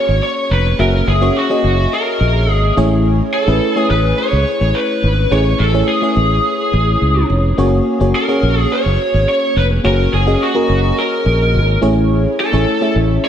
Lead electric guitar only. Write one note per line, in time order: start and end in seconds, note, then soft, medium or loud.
0.00 0.22 C#5 loud
0.23 0.52 C#5 loud
0.51 0.77 B4 loud
0.80 1.08 A#4 loud
1.09 1.37 G#4 medium
1.37 1.94 F#4 medium
1.93 2.51 A#4 medium
2.51 2.73 G#4 medium
3.34 3.76 A4 loud
3.76 3.90 G#4 loud
3.90 4.19 B4 loud
4.18 4.76 C#5 loud
4.75 5.33 B4 loud
5.32 5.61 C#5 loud
5.59 5.88 A4 loud
5.88 7.26 G#4 medium
8.15 8.60 A#4 loud
8.60 8.73 G#4 loud
8.72 9.27 C#5 loud
9.29 9.57 C#5 loud
9.57 9.65 B4 loud
9.86 10.13 A#4 loud
10.14 10.42 G#4 medium
10.42 11.00 F#4 medium
10.98 11.79 A#4 medium
12.40 12.92 A4 loud
13.25 13.29 C#5 loud